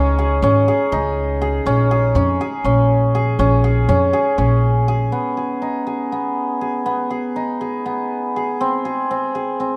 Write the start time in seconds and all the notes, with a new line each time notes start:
Already playing: C#2 C#4 D#4 G#4
0.19 G#4
0.42 G#1 C#4
0.68 G#4
0.92 C#2 D#4
1.42 G#4
1.66 A#1 C#4
1.91 G#4
2.15 F2 C#4
2.41 G#4
2.64 A#1 C#4
3.15 G#4
3.39 A#1 C#4
3.64 G#4
3.89 F2 C#4
4.13 G#4
4.38 A#1 C#4
4.88 G#4
5.12 B3
5.37 G#4
5.62 D#4
5.87 G#4
6.12 B3
6.61 G#4
6.86 B3
7.10 G#4
7.36 D#4
7.61 G#4
7.86 B3
8.36 G#4
8.61 C4
8.85 G#4
9.11 C4
9.35 G#4
9.60 C4